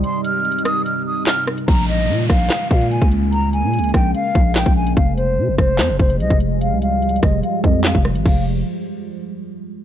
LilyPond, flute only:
\new Staff \with { instrumentName = "Flute" } { \time 4/4 \key f \minor \tempo 4 = 146 c'''8 f'''4 ees'''8 f'''8 ees'''8 f'''8 r8 | bes''8 ees''4 f''4 f''8 aes''8 r8 | bes''8 aes''4 g''8 f''4 g''8 aes''8 | f''8 c''4 c''4 c''8 ees''8 r8 |
f''8 f''4 ees''8 f''8 ees''8 f''8 r8 | f''8 r2. r8 | }